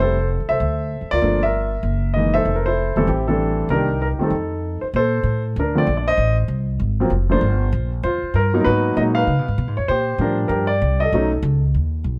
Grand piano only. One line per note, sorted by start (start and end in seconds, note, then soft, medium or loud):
0.00 0.15 G3 soft
0.00 0.16 A3 soft
0.00 0.16 C4 soft
0.00 0.16 E4 soft
0.00 0.49 A4 medium
0.00 0.28 C5 medium
0.49 1.07 A4 medium
0.49 1.08 C5 medium
0.49 1.12 E5 medium
1.11 1.70 F4 medium
1.11 1.44 A#4 medium
1.11 1.43 D5 loud
1.22 1.39 F3 medium
1.22 1.40 A3 soft
1.22 1.40 A#3 soft
1.22 1.40 D4 medium
1.43 2.13 A#4 medium
1.43 2.18 E5 medium
2.14 2.46 E3 soft
2.14 2.47 G#3 soft
2.14 2.47 A#3 soft
2.14 2.47 D#4 medium
2.14 2.32 D#5 medium
2.34 2.66 A4 medium
2.34 2.64 C5 medium
2.34 2.55 E5 loud
2.55 2.65 A#4 medium
2.66 3.07 E4 medium
2.66 2.95 A4 medium
2.66 2.97 C5 medium
2.97 3.07 E3 medium
2.97 3.07 G3 medium
2.97 3.07 A3 medium
2.97 3.07 C4 medium
2.97 3.09 A4 medium
3.08 3.28 C4 medium
3.08 3.27 E4 soft
3.08 3.26 G4 medium
3.28 3.68 E3 medium
3.28 3.68 G3 soft
3.28 3.68 A3 soft
3.28 3.68 C4 medium
3.28 3.69 D4 medium
3.28 3.67 E4 medium
3.28 3.67 A4 medium
3.70 3.87 D#3 medium
3.70 3.87 G3 soft
3.70 3.87 A#3 soft
3.70 3.88 D4 medium
3.70 4.22 D#4 medium
3.70 4.28 G4 medium
3.70 4.00 A#4 medium
4.02 4.07 A#4 medium
4.19 4.30 D#3 medium
4.19 4.31 G3 medium
4.19 4.31 A3 medium
4.19 4.31 C4 medium
4.23 4.80 D#4 soft
4.23 4.79 A4 medium
4.81 4.86 C5 medium
4.96 5.53 A4 medium
4.96 5.42 C5 medium
5.59 6.15 D4 medium
5.59 5.77 A#4 medium
5.75 5.85 D3 medium
5.75 5.86 F3 medium
5.75 5.86 A3 medium
5.75 5.86 C4 medium
5.75 5.96 D5 medium
5.97 6.06 D5 medium
6.07 6.65 C5 medium
6.07 6.36 D#5 loud
7.00 7.10 F3 medium
7.00 7.10 F#3 medium
7.00 7.10 A#3 medium
7.00 7.10 C4 medium
7.30 7.40 F3 medium
7.30 7.41 A3 medium
7.30 7.41 A#3 medium
7.30 7.41 D4 medium
7.30 7.89 F4 medium
7.30 7.89 C5 medium
8.04 8.62 F4 medium
8.04 8.35 C5 medium
8.36 8.59 A#4 medium
8.54 8.94 F#3 medium
8.54 8.94 A#3 medium
8.54 8.95 B3 medium
8.54 8.94 D#4 medium
8.60 8.65 A#4 medium
8.64 9.23 F#4 medium
8.64 8.94 B4 medium
8.96 9.27 F#3 medium
8.96 9.28 G#3 medium
8.96 9.27 A#3 soft
8.96 9.28 D#4 medium
8.96 9.02 D#5 medium
9.15 9.74 B4 medium
9.15 9.73 F5 medium
9.77 9.88 C#5 medium
9.88 10.48 G4 medium
9.88 10.35 C5 medium
10.20 10.66 F3 medium
10.20 10.67 G3 medium
10.20 10.67 D4 medium
10.20 10.47 A#4 medium
10.48 11.09 G4 medium
10.48 10.69 A#4 medium
10.67 11.01 D5 medium
11.00 11.60 A4 medium
11.00 11.29 D#5 medium
11.14 11.31 F#3 medium
11.14 11.31 A3 medium
11.14 11.31 C#4 medium
11.14 11.31 D#4 medium